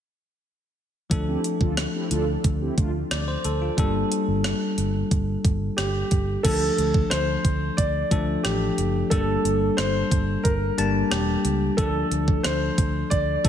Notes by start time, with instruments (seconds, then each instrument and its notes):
1.10 fingered electric bass D2, tine electric piano F3 A3 D4 A4, kick, closed hi-hat
1.28 analog polysynth C4 E4 G4
1.44 closed hi-hat
1.61 fingered electric bass D2, analog polysynth D4 F4 A4, kick
1.77 cross-stick, closed hi-hat
1.94 analog polysynth C4 E4 G4
2.11 fingered electric bass D2, analog polysynth D4 F4 A4, closed hi-hat
2.44 fingered electric bass D2, kick, closed hi-hat
2.61 analog polysynth C4 E4 G4
2.78 fingered electric bass D2, analog polysynth A3 D4 F4, kick, closed hi-hat
3.11 fingered electric bass D2, tine electric piano D5, cross-stick, closed hi-hat
3.28 tine electric piano C5
3.44 fingered electric bass D2, tine electric piano A4, closed hi-hat
3.62 tine electric piano F4
3.77 fingered electric bass G1, tine electric piano G3 A#3 D4 A4, kick, closed hi-hat
4.12 closed hi-hat
4.28 fingered electric bass G1
4.44 cross-stick, closed hi-hat
4.78 fingered electric bass G1, closed hi-hat
5.11 fingered electric bass G1, kick, closed hi-hat
5.45 fingered electric bass G1, kick, closed hi-hat
5.77 fingered electric bass G1, grand piano G4, cross-stick, closed hi-hat
6.11 fingered electric bass G1, kick, closed hi-hat
6.43 fingered electric bass D2, tine electric piano F3 A3 D4 A4, grand piano A4, kick, closed hi-hat, crash
6.78 fingered electric bass D2, closed hi-hat
6.94 kick
7.10 fingered electric bass D2, grand piano C5, cross-stick, closed hi-hat
7.45 fingered electric bass D2, kick, closed hi-hat
7.77 fingered electric bass D2, grand piano D5, kick, closed hi-hat
8.11 fingered electric bass D2, tine electric piano F3 A3 D4 A4, kick, closed hi-hat
8.43 fingered electric bass A1, grand piano G4, cross-stick, closed hi-hat
8.78 fingered electric bass F#1, closed hi-hat
9.10 fingered electric bass G1, tine electric piano G3 A#3 D4 A4, grand piano A4, kick, closed hi-hat
9.45 fingered electric bass G1, closed hi-hat
9.77 fingered electric bass G1, grand piano C5, cross-stick, closed hi-hat
10.11 fingered electric bass G1, kick, closed hi-hat
10.43 fingered electric bass G1, grand piano A#4, kick, closed hi-hat
10.77 fingered electric bass G1, tine electric piano G3 A#3 D4 A5, closed hi-hat
11.10 fingered electric bass E1, grand piano G4, cross-stick, closed hi-hat
11.45 fingered electric bass C#2, closed hi-hat
11.77 fingered electric bass D2, tine electric piano F3 A3 D4 A4, grand piano A4, kick, closed hi-hat
12.11 fingered electric bass D2, closed hi-hat
12.28 kick
12.43 fingered electric bass D2, grand piano C5, cross-stick, closed hi-hat
12.78 fingered electric bass D2, kick, closed hi-hat
13.10 fingered electric bass D2, grand piano D5, kick, closed hi-hat
13.44 fingered electric bass D2, tine electric piano F3 A3 D4 A4, kick, closed hi-hat